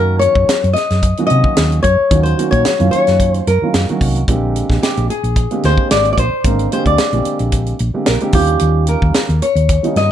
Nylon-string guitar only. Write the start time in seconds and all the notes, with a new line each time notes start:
Already playing: A#4
0.19 C#5
0.73 D#5
1.27 D#5
1.83 C#5
2.23 C5
2.51 C#5
2.91 C#5
3.32 C5
3.48 A#4
4.83 G4
5.10 G#4
5.65 C5
5.91 D5
6.13 D5
6.19 C5
6.73 C5
6.87 D5
8.07 A#4
8.35 G4
8.89 A#4
9.42 C#5
9.97 D#5